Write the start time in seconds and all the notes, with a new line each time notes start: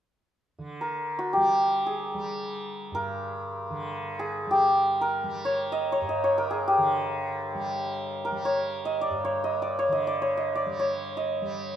0.58 D3
0.81 A#4
1.19 F#4
1.33 G3 G4
1.86 G#4
2.14 G3
2.92 G2 A#4
3.70 D3
4.19 G#4
4.47 G3
4.51 G4
5.01 A#4
5.24 G3
5.45 C#5
5.72 D#5
5.92 C#5
6.01 G2
6.09 D#5
6.24 C#5
6.38 A#4
6.51 G#4
6.68 G4
6.78 D3
7.55 G3
8.25 A#4
8.32 G3
8.45 C#5
8.85 D#5
9.01 D5
9.10 G2
9.25 C#5
9.44 D#5
9.62 D5
9.79 C#5
9.88 D3
9.92 D#5
10.07 D5
10.22 C#5
10.37 D#5
10.55 D5
10.66 G3
10.80 C#5
11.17 D#5
11.42 G3